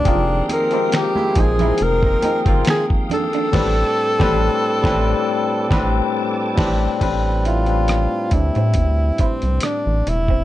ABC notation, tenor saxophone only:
X:1
M:4/4
L:1/8
Q:"Swing 16ths" 1/4=69
K:Am
V:1 name="Tenor saxophone"
D _B G _A B z A =A- | A6 z2 | z F2 E2 C D E |]